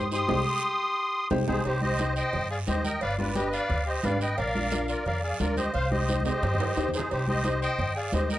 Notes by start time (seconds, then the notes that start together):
Already playing: G2 D#6
0.11 D#4 G4 C5 C6 D#6, short guiro
0.28 C2 D#4 G4 C5, high conga, high timbale, long guiro
1.30 C2 D#4 G4 C5, high conga, high timbale, long guiro
1.48 C2 D#4 G4 G#4 C5, high conga, high timbale, long guiro
1.65 C2 D#4 G4 C5, cowbell, long guiro
1.82 D#4 G4 C5 D#5, high conga
1.98 D#4 G4 C5, cowbell, high conga, short guiro
2.16 C5 D#5 G5, short guiro
2.33 G2, cowbell, high conga, low conga, long guiro
2.51 G#4 D5 F5
2.67 D#2 D#4 G4 C5 D#5, cowbell, high conga, low timbale, short guiro
2.84 A#4 D#5 G5, high conga, short guiro
3.01 G1 B4 D5 F5, cowbell, high conga, long guiro
3.18 D4 F4 G4 B4 D5, high conga
3.35 D4 G4 B4 D#5, cowbell, high conga, short guiro
3.51 B4 D5 F5, short guiro
3.70 D2, cowbell, high conga, low conga, long guiro
3.86 G4 C5 D#5
4.03 G#1 D4 G4 B4 D5 F5, cowbell, high conga, low timbale, short guiro
4.20 B4 D#5 G5, short guiro
4.37 A#1 A#4 D5 F5, cowbell, high conga, long guiro
4.55 D4 F4 A#4, high conga
4.71 D4 F4 A#4, cowbell, high conga, short guiro
4.88 F4 A#4 D5, short guiro
5.05 F2 A#4 D5 F5, cowbell, high conga, low conga, long guiro
5.23 G#4 D5 F5
5.40 D2 D4 F4 A#4 D5, cowbell, high conga, low timbale, short guiro
5.57 G4 C5 D#5, high conga, short guiro
5.73 C2 C5 F5, cowbell, high conga, long guiro
5.90 D#4 G4 C5 D#5, high conga
6.08 D#4 G4 C5, cowbell, high conga, short guiro
6.20 high conga
6.24 G4 C5 D#5, high timbale, short guiro
6.43 G2, cowbell, low conga, long guiro
6.54 low conga
6.60 low timbale
6.77 D#2 D#4 G4 C5, cowbell, low timbale, short guiro
6.88 low conga
6.94 D#4 G#4 C5, low timbale, short guiro
6.99 low conga
7.10 C2 D#4 G4 C5, cowbell, high conga, long guiro
7.27 D#4 G4 C5 D#5, high conga
7.44 D#4 G4 C5, cowbell, high conga, short guiro
7.62 C5 D#5 G5, short guiro
7.79 G2, cowbell, high conga, low conga, long guiro
7.96 G#4 D5 F5
8.12 D#2 D#4 G4 C5 D#5, cowbell, high conga, low timbale, short guiro
8.30 A#4 D#5 G5, high conga, short guiro